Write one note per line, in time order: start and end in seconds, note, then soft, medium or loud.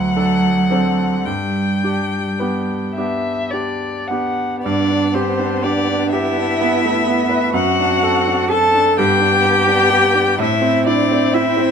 0.00 0.15 D2 medium
0.00 1.25 F#3 medium
0.00 1.27 F#5 medium
0.16 0.66 D4 soft
0.16 0.66 A4 soft
0.71 1.23 C4 soft
0.71 1.23 D4 soft
0.71 1.23 A4 soft
0.71 1.12 C5 medium
1.25 1.82 G2 soft
1.25 2.93 G3 medium
1.25 2.96 G5 medium
1.83 2.36 D4 soft
1.83 2.37 G4 soft
2.39 2.93 B3 soft
2.39 2.93 D4 soft
2.39 2.93 G4 soft
2.39 2.81 B4 soft
2.94 3.49 B3 soft
2.94 3.50 G4 soft
2.94 3.51 E5 medium
2.98 3.50 D4 soft
3.50 4.06 D4 soft
3.50 4.07 G4 soft
3.50 4.09 D5 soft
4.07 4.60 B3 soft
4.07 4.60 D4 soft
4.07 4.60 F#5 soft
4.12 4.61 G4 soft
4.61 7.47 B3 medium
4.61 5.16 D4 medium
4.61 5.15 D5 medium
4.66 7.50 G2 medium
4.91 5.29 D4 soft
5.14 5.66 C4 medium
5.14 5.53 G4 medium
5.14 5.64 C5 medium
5.39 5.78 D4 soft
5.63 6.14 D4 medium
5.63 6.02 G4 medium
5.63 6.10 D5 medium
5.88 6.26 D4 soft
6.11 7.53 E4 medium
6.11 6.50 G4 medium
6.11 7.50 E5 medium
6.37 6.74 D4 soft
6.61 6.98 B3 medium
6.85 7.07 A3 soft
7.06 7.44 B3 soft
7.29 7.53 B4 medium
7.52 8.94 F#2 medium
7.52 8.94 C4 medium
7.52 8.52 F#4 medium
7.52 8.49 F#5 medium
7.80 8.17 D4 soft
8.03 8.41 A4 medium
8.27 8.65 D4 soft
8.50 9.00 A4 medium
8.50 8.90 A4 medium
8.50 8.97 A5 medium
8.74 8.98 D4 soft
8.98 10.36 G2 medium
8.98 10.36 B3 medium
8.98 10.38 G4 medium
8.98 10.37 G5 loud
9.21 9.59 D4 soft
9.45 9.83 G4 medium
9.68 10.06 D4 medium
9.90 10.29 G4 medium
10.15 10.39 D4 medium
10.39 11.71 A2 medium
10.39 11.71 C4 medium
10.39 10.88 E4 medium
10.39 10.86 E5 medium
10.61 11.00 C4 medium
10.86 11.34 D4 medium
10.86 11.24 E4 medium
10.86 11.35 D5 medium
11.11 11.48 C4 medium
11.33 11.71 E4 medium
11.33 11.71 E5 medium
11.57 11.71 C4 soft